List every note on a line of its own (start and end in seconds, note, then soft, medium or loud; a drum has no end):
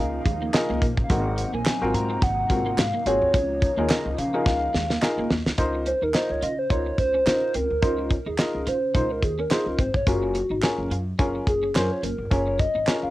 0.00 0.19 C#2 loud
0.00 1.07 C#3 medium
0.00 1.07 F3 medium
0.00 3.30 A#3 medium
0.00 0.20 D#4 medium
0.00 1.08 D#4 medium
0.00 0.20 F4 medium
0.00 0.20 G#4 medium
0.00 0.21 A#4 medium
0.00 0.82 F5 loud
0.25 0.46 D#2 medium
0.25 0.36 G#3 medium
0.25 kick medium
0.25 closed hi-hat medium
0.42 0.50 A#3 medium
0.54 0.83 D#4 loud
0.54 0.83 F4 medium
0.54 0.83 G#4 medium
0.54 0.83 A#4 loud
0.54 snare loud
0.54 clap medium
0.54 closed hi-hat medium
0.69 0.79 C#2 medium
0.69 0.78 A#3 medium
0.81 0.93 A#1 medium
0.81 0.93 A#3 medium
0.81 kick medium
0.81 closed hi-hat medium
0.97 1.06 A1 medium
0.97 kick medium
1.03 1.12 F5 medium
1.10 1.42 G#1 loud
1.10 3.32 C3 medium
1.10 3.32 F#3 medium
1.10 1.20 G#3 medium
1.10 1.47 C4 medium
1.10 3.32 D#4 medium
1.10 1.47 D#4 medium
1.10 1.47 F#4 medium
1.10 1.47 A#4 medium
1.10 1.55 F#5 loud
1.10 kick loud
1.10 closed hi-hat loud
1.38 muted clean electric guitar stroke soft
1.38 closed hi-hat medium
1.53 1.63 A#1 medium
1.53 1.62 A#3 medium
1.53 1.96 G#5 loud
1.65 1.77 C4 medium
1.65 snare loud
1.65 clap medium
1.65 closed hi-hat loud
1.81 1.91 G#1 loud
1.81 2.17 C4 medium
1.81 2.17 F4 medium
1.81 2.17 F#4 medium
1.81 2.17 A#4 loud
1.94 2.15 G#2 loud
1.94 2.24 A#5 loud
1.94 muted clean electric guitar stroke soft
1.94 closed hi-hat medium
2.10 2.18 C4 medium
2.22 2.43 G#1 loud
2.22 2.80 F#5 loud
2.22 muted clean electric guitar stroke soft
2.22 kick loud
2.22 closed hi-hat medium
2.50 2.71 G#1 loud
2.50 2.60 G#3 medium
2.50 2.79 C4 medium
2.50 2.79 F4 medium
2.50 2.79 F#4 medium
2.50 2.79 A#4 medium
2.50 kick medium
2.50 closed hi-hat medium
2.66 2.74 A#3 medium
2.78 2.89 G#2 loud
2.78 3.08 F5 loud
2.78 muted clean electric guitar stroke soft
2.78 snare loud
2.78 clap medium
2.78 closed hi-hat loud
2.94 3.02 A#3 medium
3.06 3.18 G#1 medium
3.06 3.17 A#3 medium
3.06 3.34 C4 medium
3.06 3.34 F4 medium
3.06 3.34 F#4 medium
3.06 3.34 G#4 loud
3.06 3.92 C#5 loud
3.06 closed hi-hat medium
3.22 3.31 D2 loud
3.34 3.67 C#2 loud
3.34 5.56 C#3 medium
3.34 5.56 F3 medium
3.34 5.56 A#3 medium
3.34 3.45 C#4 loud
3.34 5.56 D#4 medium
3.34 kick loud
3.34 closed hi-hat medium
3.62 muted clean electric guitar stroke soft
3.62 kick loud
3.62 closed hi-hat medium
3.77 3.87 D#2 medium
3.77 3.86 A#3 medium
3.77 4.06 D#4 medium
3.77 4.07 F4 medium
3.77 4.07 G#4 medium
3.77 4.07 A#4 medium
3.90 4.01 C#4 medium
3.90 4.18 D#5 loud
3.90 snare loud
3.90 clap medium
3.90 closed hi-hat loud
4.05 4.15 C#2 loud
4.18 4.39 C#3 loud
4.18 5.27 F5 medium
4.18 muted clean electric guitar stroke soft
4.18 closed hi-hat medium
4.34 4.42 C#4 medium
4.34 4.69 D#4 medium
4.34 4.69 F4 medium
4.34 4.69 G#4 medium
4.34 4.69 A#4 medium
4.46 4.67 C#2 loud
4.46 muted clean electric guitar stroke medium
4.46 kick loud
4.46 snare medium
4.74 4.95 D#2 loud
4.74 4.85 G#3 medium
4.74 snare medium
4.90 4.98 A#3 medium
4.90 snare medium
5.02 5.31 D#4 medium
5.02 5.31 F4 medium
5.02 5.31 G#4 medium
5.02 5.31 A#4 loud
5.02 muted clean electric guitar stroke soft
5.02 snare medium
5.02 clap medium
5.18 5.27 C#2 medium
5.18 5.27 A#3 medium
5.30 5.42 D#2 medium
5.30 5.41 A#3 medium
5.30 snare loud
5.46 5.55 D2 loud
5.46 snare medium
5.58 5.91 C#2 loud
5.58 5.87 D#4 loud
5.58 5.87 F4 medium
5.58 5.87 A#4 medium
5.58 5.87 C5 loud
5.58 kick medium
5.58 closed hi-hat medium
5.75 muted clean electric guitar stroke soft
5.86 5.97 C#4 medium
5.86 6.05 C5 loud
5.86 closed hi-hat medium
6.02 6.11 D#2 medium
6.02 6.11 D#4 medium
6.02 6.17 A#4 loud
6.14 6.43 D#4 medium
6.14 6.43 F4 medium
6.14 6.43 A#4 medium
6.14 6.32 C5 loud
6.14 6.43 D#5 medium
6.14 snare loud
6.14 clap medium
6.14 closed hi-hat medium
6.30 6.39 C#2 medium
6.30 6.45 C#5 loud
6.42 6.63 C#3 medium
6.42 6.53 F4 medium
6.42 6.58 D#5 loud
6.42 closed hi-hat medium
6.59 6.70 C5 loud
6.70 6.91 C#2 medium
6.70 6.99 D#4 medium
6.70 6.81 D#4 medium
6.70 6.99 F4 medium
6.70 6.99 A#4 medium
6.70 6.99 C5 medium
6.70 6.97 C#5 loud
6.70 kick loud
6.70 closed hi-hat medium
6.86 muted clean electric guitar stroke soft
6.98 7.19 C#2 medium
6.98 7.57 C5 loud
6.98 kick medium
6.98 closed hi-hat medium
7.14 7.22 C#4 medium
7.26 7.38 C#3 medium
7.26 7.55 D#4 medium
7.26 7.55 F4 medium
7.26 7.55 A#4 medium
7.26 7.56 D#5 medium
7.26 snare loud
7.26 clap medium
7.26 closed hi-hat medium
7.54 7.66 C#2 medium
7.54 7.65 C4 medium
7.54 8.29 A#4 loud
7.54 closed hi-hat medium
7.70 7.80 D2 medium
7.82 8.15 C#2 loud
7.82 8.11 D#4 medium
7.82 8.11 F4 medium
7.82 8.11 A#4 medium
7.82 8.12 C5 medium
7.82 kick loud
7.82 closed hi-hat medium
7.98 muted clean electric guitar stroke soft
8.10 8.21 C#4 medium
8.10 kick medium
8.10 closed hi-hat medium
8.26 8.35 D#2 medium
8.26 8.35 D#4 medium
8.26 8.70 G#4 loud
8.38 8.67 D#4 medium
8.38 8.67 F4 medium
8.38 8.68 A#4 medium
8.38 8.68 D#5 medium
8.38 snare loud
8.38 clap medium
8.38 closed hi-hat medium
8.55 8.64 C#2 medium
8.67 8.96 C#3 loud
8.67 8.77 F4 medium
8.67 8.95 C5 medium
8.67 closed hi-hat medium
8.94 9.22 C#2 loud
8.94 9.23 D#4 medium
8.94 9.05 D#4 medium
8.94 9.24 F4 medium
8.94 9.24 A#4 medium
8.94 9.24 C5 medium
8.94 9.13 C5 medium
8.94 kick loud
8.94 closed hi-hat medium
9.11 9.23 A#4 medium
9.11 muted clean electric guitar stroke soft
9.22 9.44 D#2 medium
9.22 9.41 G#4 medium
9.22 kick medium
9.22 closed hi-hat medium
9.39 9.47 C#4 medium
9.39 9.52 A#4 medium
9.50 9.79 D#4 medium
9.50 9.80 F4 medium
9.50 9.66 G#4 medium
9.50 9.80 A#4 medium
9.50 9.80 C5 medium
9.50 snare loud
9.50 clap medium
9.50 closed hi-hat medium
9.66 9.76 C#2 medium
9.66 9.82 A#4 medium
9.79 9.90 G#1 medium
9.79 9.89 C4 medium
9.79 9.95 C5 medium
9.79 kick medium
9.79 closed hi-hat medium
9.94 10.04 G1 medium
9.94 10.09 C#5 medium
9.94 kick medium
10.07 10.39 F#1 loud
10.07 10.36 C#4 medium
10.07 10.36 F4 medium
10.07 10.64 F#4 medium
10.07 10.36 G#4 medium
10.07 10.36 A#4 medium
10.07 kick loud
10.07 closed hi-hat medium
10.23 muted clean electric guitar stroke soft
10.35 10.45 C#4 medium
10.35 closed hi-hat medium
10.50 10.60 G#1 medium
10.50 10.59 D#4 medium
10.62 10.92 C#4 medium
10.62 10.92 F4 medium
10.62 10.92 G#4 medium
10.62 10.92 A#4 medium
10.62 snare loud
10.62 clap medium
10.62 closed hi-hat medium
10.78 10.88 F#1 loud
10.90 11.12 F#2 medium
10.90 11.02 F4 medium
10.90 closed hi-hat medium
11.19 11.40 F#1 medium
11.19 11.48 C#4 medium
11.19 11.29 D#4 medium
11.19 11.48 F4 medium
11.19 11.48 G#4 medium
11.19 11.48 A#4 medium
11.19 kick loud
11.19 closed hi-hat medium
11.35 muted clean electric guitar stroke soft
11.47 11.68 F#1 medium
11.47 11.74 G#4 medium
11.47 kick medium
11.47 closed hi-hat medium
11.63 11.71 C#4 medium
11.75 11.87 F#2 loud
11.75 12.04 C#4 medium
11.75 12.04 F4 medium
11.75 12.04 G#4 medium
11.75 11.93 A#4 medium
11.75 12.04 C5 medium
11.75 snare loud
11.75 clap medium
11.75 closed hi-hat medium
11.92 12.06 C#5 medium
12.03 12.15 F#1 medium
12.03 12.14 A#3 medium
12.03 12.33 A#4 loud
12.03 closed hi-hat medium
12.18 12.28 G1 medium
12.31 12.64 F#1 loud
12.31 12.60 C#4 medium
12.31 12.60 F4 medium
12.31 12.60 G#4 medium
12.31 12.60 A#4 medium
12.31 12.47 C#5 loud
12.31 kick medium
12.31 closed hi-hat medium
12.47 12.59 C#5 medium
12.47 muted clean electric guitar stroke soft
12.59 12.70 C#4 medium
12.59 13.00 D#5 loud
12.59 kick medium
12.59 closed hi-hat medium
12.75 12.84 G#1 medium
12.75 12.83 D#4 medium
12.87 13.10 C#4 medium
12.87 13.10 F4 medium
12.87 13.10 G#4 medium
12.87 13.10 A#4 medium
12.87 snare loud
12.87 clap medium
12.87 closed hi-hat medium
13.03 13.10 F#1 medium
13.03 13.10 F5 loud